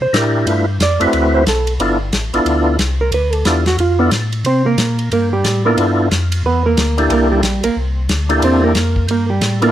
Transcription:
0.01 0.07 C3 soft
0.01 0.16 C5 loud
0.13 0.46 A2 medium
0.13 0.45 D4 medium
0.13 0.46 E4 medium
0.13 0.47 G4 medium
0.13 0.47 A#4 medium
0.13 0.48 A#4 medium
0.13 snare medium
0.13 hi-hat pedal medium
0.13 ride medium
0.46 0.79 G2 medium
0.46 0.65 A3 medium
0.46 0.65 D4 medium
0.46 0.66 E4 soft
0.46 0.66 F4 soft
0.46 0.66 B4 medium
0.46 ride medium
0.80 0.99 F2 medium
0.80 1.31 D5 medium
0.80 snare medium
0.80 hi-hat pedal medium
0.80 ride medium
1.00 1.07 F2 soft
1.00 1.43 A3 medium
1.00 1.44 C4 medium
1.00 1.44 E4 medium
1.00 1.44 F#4 medium
1.00 1.44 B4 medium
1.00 ride soft
1.13 1.45 D2 medium
1.13 ride medium
1.34 1.46 C5 medium
1.46 1.78 B1 medium
1.46 1.73 A4 medium
1.46 snare medium
1.46 hi-hat pedal medium
1.46 ride medium
1.67 ride soft
1.79 2.12 G1 medium
1.79 1.98 B3 medium
1.79 1.98 D4 medium
1.79 1.99 E4 medium
1.79 1.99 F4 medium
1.79 1.99 A4 medium
1.79 ride medium
2.13 2.32 A1 medium
2.13 snare medium
2.13 hi-hat pedal soft
2.13 ride medium
2.33 2.40 A1 soft
2.33 2.77 B3 medium
2.33 2.77 D4 medium
2.33 2.77 E4 medium
2.33 2.77 F4 medium
2.33 2.78 A4 medium
2.33 ride soft
2.45 2.78 D2 medium
2.45 ride medium
2.79 3.11 C2 medium
2.79 snare medium
2.79 hi-hat pedal medium
2.79 ride medium
3.01 3.13 A#4 medium
3.12 3.44 D2 medium
3.12 3.33 B4 medium
3.12 ride medium
3.33 3.48 A4 medium
3.33 ride soft
3.45 3.77 E2 medium
3.45 3.64 B3 medium
3.45 3.64 D4 soft
3.45 3.64 E4 soft
3.45 3.65 F4 soft
3.45 3.67 G4 medium
3.45 3.65 A4 medium
3.45 snare medium
3.45 hi-hat pedal medium
3.45 ride medium
3.66 3.79 F#4 medium
3.66 snare medium
3.66 ride soft
3.78 4.10 F2 medium
3.78 4.00 F4 medium
3.78 ride medium
3.99 4.10 B3 medium
3.99 4.07 B3 medium
3.99 4.10 D4 medium
3.99 4.11 E4 medium
3.99 4.11 F4 medium
3.99 4.11 A4 medium
4.11 4.44 A2 medium
4.11 snare medium
4.11 hi-hat pedal soft
4.11 ride medium
4.32 ride soft
4.45 4.77 C3 medium
4.45 4.66 C4 medium
4.45 4.66 C5 medium
4.45 ride medium
4.66 5.08 A#3 medium
4.66 5.08 A#4 medium
4.78 5.10 A#2 medium
4.78 snare medium
4.78 hi-hat pedal medium
4.78 ride medium
4.99 ride soft
5.11 5.44 G2 medium
5.11 5.32 A#3 medium
5.11 5.32 A#4 medium
5.11 ride medium
5.33 5.63 G3 medium
5.33 5.63 G4 medium
5.44 5.76 A2 medium
5.44 snare medium
5.44 hi-hat pedal medium
5.44 ride medium
5.65 5.78 A#3 medium
5.65 6.08 B3 medium
5.65 6.08 D4 medium
5.65 6.09 E4 medium
5.65 6.09 F4 medium
5.65 6.09 A4 medium
5.65 5.78 A#4 medium
5.78 6.10 G2 medium
5.78 ride medium
6.11 6.43 F2 medium
6.11 snare medium
6.11 hi-hat pedal soft
6.11 ride medium
6.32 ride medium
6.44 6.76 E2 medium
6.44 6.65 B3 medium
6.44 6.65 B4 medium
6.66 7.08 A#3 medium
6.66 7.07 A#4 medium
6.77 7.09 D2 medium
6.77 snare medium
6.77 hi-hat pedal medium
6.77 ride medium
6.98 7.41 A#3 medium
6.98 7.41 D4 medium
6.98 7.41 E4 medium
6.98 7.41 G4 medium
6.98 7.42 A4 medium
6.98 ride soft
7.10 7.42 C2 medium
7.10 7.32 A#3 medium
7.10 7.31 A#4 medium
7.10 ride medium
7.32 7.62 G3 medium
7.32 7.62 G4 medium
7.43 7.62 A#1 medium
7.43 snare medium
7.43 hi-hat pedal medium
7.43 ride medium
7.63 7.70 A#1 soft
7.63 7.76 A#3 medium
7.63 7.76 A#4 medium
7.63 ride medium
7.76 8.08 C2 medium
8.09 8.41 D2 medium
8.09 snare medium
8.09 hi-hat pedal medium
8.09 ride medium
8.29 8.73 A#3 medium
8.29 8.73 D4 medium
8.29 8.73 E4 medium
8.29 8.73 G4 medium
8.29 8.73 A4 medium
8.29 ride soft
8.42 8.74 E2 medium
8.42 8.63 C4 medium
8.42 8.63 C5 medium
8.42 ride medium
8.64 9.06 A#3 medium
8.64 9.06 A#4 medium
8.75 9.07 F2 medium
8.75 snare medium
8.75 hi-hat pedal medium
8.75 ride medium
8.96 kick medium
9.08 9.40 G2 medium
9.08 9.30 A#3 medium
9.08 9.30 A#4 medium
9.08 ride medium
9.30 9.60 G3 soft
9.30 9.60 G4 medium
9.41 9.72 A2 medium
9.41 snare medium
9.41 hi-hat pedal medium
9.41 ride medium
9.62 9.70 A#3 medium
9.62 9.72 B3 medium
9.62 9.72 D4 medium
9.62 9.72 E4 medium
9.62 9.72 F4 medium
9.62 9.72 A4 medium
9.62 9.70 A#4 medium
9.62 ride soft

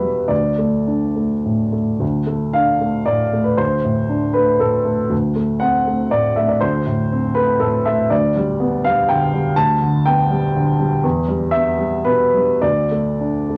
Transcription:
0.00 0.25 E2 soft
0.00 0.18 B2 soft
0.00 0.33 G3 soft
0.00 0.33 B3 soft
0.00 0.29 B4 medium
0.00 0.33 E5 medium
0.28 1.97 D2 soft
0.28 1.73 D5 medium
0.58 1.05 A3 soft
0.87 1.34 D4 soft
1.16 1.62 A3 soft
1.45 1.91 A2 soft
1.72 2.00 A3 soft
2.00 3.55 D2 soft
2.26 2.70 A3 soft
2.53 2.97 D4 soft
2.53 3.07 F5 medium
2.80 3.23 A3 soft
3.05 3.49 A2 soft
3.05 3.46 D5 medium
3.33 3.75 A3 soft
3.44 3.58 B4 medium
3.57 5.07 D2 soft
3.57 4.35 C5 medium
3.84 4.26 A2 soft
4.09 4.50 D4 soft
4.33 4.76 A3 soft
4.33 4.60 B4 medium
4.60 5.01 A2 soft
4.60 5.11 A4 medium
4.85 5.11 A3 soft
5.10 6.58 D2 soft
5.36 5.76 A3 soft
5.60 6.01 C4 soft
5.60 6.11 F#5 medium
5.87 6.27 A3 soft
6.11 6.53 A2 soft
6.11 6.37 D5 medium
6.36 6.77 A3 soft
6.36 6.50 E5 medium
6.49 6.62 D5 medium
6.61 8.07 D2 soft
6.61 7.35 C5 medium
6.87 7.26 A2 soft
7.12 7.51 C4 soft
7.35 7.76 A3 soft
7.35 7.60 B4 medium
7.60 8.01 A2 soft
7.60 7.85 A4 medium
7.85 8.11 A3 soft
7.85 8.10 E5 medium
8.10 9.53 D2 soft
8.10 8.83 D5 medium
8.36 8.74 G3 soft
8.60 8.98 B3 soft
8.84 9.23 G3 soft
8.84 9.08 F5 medium
9.08 9.48 D3 soft
9.08 9.57 G5 medium
9.33 9.72 G3 soft
9.56 11.00 D2 medium
9.56 10.05 A5 medium
9.81 10.20 D3 soft
10.06 10.46 B3 soft
10.06 10.55 G5 medium
10.30 10.70 G3 soft
10.56 10.95 D3 soft
10.79 11.04 G3 soft
11.04 12.59 E2 medium
11.28 11.69 G3 soft
11.51 11.95 B3 soft
11.51 12.05 E5 medium
11.78 12.22 G3 soft
12.05 12.51 B2 soft
12.05 12.62 B4 medium
12.34 12.63 G3 soft
12.62 13.57 D2 soft
12.62 13.57 D5 medium
12.91 13.37 A3 soft
13.20 13.57 D4 soft
13.49 13.57 A3 soft

